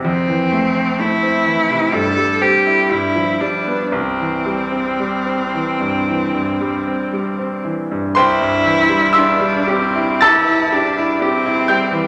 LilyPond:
<<
  \new Staff \with { instrumentName = "Cello" } { \time 4/4 \key c \major \tempo 4 = 60 c'4 e'4 a'8 g'8 e'8 d'8 | c'2.~ c'8 r8 | e'4 d'8 c'8 e'8 d'8 c'4 | }
  \new Staff \with { instrumentName = "Grand piano" } { \time 4/4 \key c \major r1 | r1 | <c'' g'' c'''>4 <e'' c''' e'''>4 <a'' e''' a'''>4. <g'' g'''>8 | }
  \new Staff \with { instrumentName = "Grand piano" } { \clef bass \time 4/4 \key c \major f,16 e16 a16 c'16 a16 c'16 e16 c16 g,16 g16 c'16 e'16 g,16 f16 g16 b16 | c,16 e16 g16 c'16 g16 c'16 e16 g,16 e16 g,16 g16 c'16 g16 c'16 e16 g,16 | c,16 g,16 e16 g16 e'16 g16 g'16 e'16 g'16 e'16 g'16 e'16 g'16 e'16 g16 e16 | }
>>